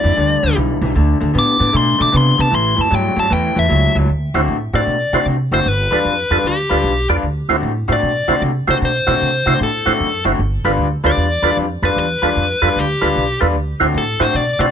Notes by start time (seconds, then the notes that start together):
Already playing: D5
0.03 F2 G2 E3
0.17 D2 G2 D3
0.43 D2 G2 D3
0.56 B1 G2 E3
0.81 B1 G2 E3
0.95 D2 D3 A3
1.21 D2 D3 A3
1.34 A2 D3 B3
1.39 D6
1.59 A2 D3 B3
1.73 B2 D3 A3
1.77 C6
1.98 B2 D3 A3 D6
2.12 C3 D3 B3
2.17 C6
2.38 C3 D3 B3 A5
2.51 A1 A2 E3
2.55 C6
2.76 F#2 A2 E3
2.81 A5
2.91 G2 A2 F#3
2.95 G5
3.16 G2 A2 F#3 A5
3.30 E2 A2 E3 G5
3.55 E2 A2 E3 E5
3.69 C#2 A2 F#3
3.95 C#2 A2 F#3
4.09 D2
4.34 D2 D3 A3 C4 E4 F#4 C5
4.48 A2
4.74 A2 D3 A3 C4 E4 F#4 C5 D5
4.87 B2
5.13 B2 D3 A3 C4 E4 F#4 C5
5.26 C3
5.51 F#1 D3 A3 C4 E4 F#4 C5
5.66 G1 B4
5.91 E2 G3 D4 F4 A4 B4
6.05 F2
6.31 F2 G3 D4 F4 A4 B4
6.44 D2 G4
6.70 D2 G3 D4 F4 A4 B4
6.84 B1
7.09 E2 G3 D4 F4 A4 B4 D5
7.23 D2
7.49 D2 D3 A3 C4 E4 F#4 C5
7.63 A2
7.88 A2 D3 A3 C4 E4 F#4 C5
7.93 D5
8.03 B2
8.28 B2 D3 A3 C4 E4 F#4 C5
8.42 C3
8.67 C3 D3 A3 C4 E4 F#4 C5
8.82 B2 C5
9.07 B2 D3 A3 C4 E4 F#4 C5
9.21 C3
9.46 C3 D3 A3 C4 E4 F#4 C5
9.61 A2 A4
9.86 A2 D3 A3 C4 E4 F#4 C5
10.00 F#2
10.25 F#1 D3 A3 C4 E4 F#4 C5
10.39 G1
10.64 G1 G3 D4 F4 A4 B4
10.78 D2
11.04 D2 G3 D4 F4 A4 B4 D5
11.17 E2
11.42 E2 G3 D4 F4 A4 B4
11.57 F2
11.82 F2 G3 D4 F4 A4 B4
11.96 E2 B4
12.22 E2 G3 D4 F4 A4 B4
12.36 F2
12.62 F2 G3 D4 F4 A4 B4
12.76 D2 G4
13.01 D2 G3 D4 F4 A4 B4
13.16 B1
13.41 E2 G3 D4 F4 A4 B4
13.55 D2
13.80 D2 D3 A3 C4 E4 F#4 C5
13.94 A2 A4
14.20 A2 D3 A3 C4 E4 F#4 C5
14.34 B2 D5
14.59 B2 D3 A3 C4 E4 F#4 C5 D5